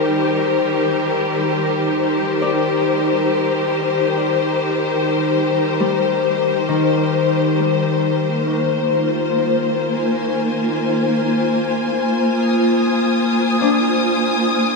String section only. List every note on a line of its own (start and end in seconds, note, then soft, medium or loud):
0.00 11.79 D#3 medium
0.00 8.30 G3 medium
0.00 8.29 G4 medium
0.00 11.43 A#4 medium
0.00 14.76 C5 medium
8.30 14.76 A#3 medium
8.92 14.76 F4 medium
9.89 14.76 G#5 medium
12.37 14.76 D#6 medium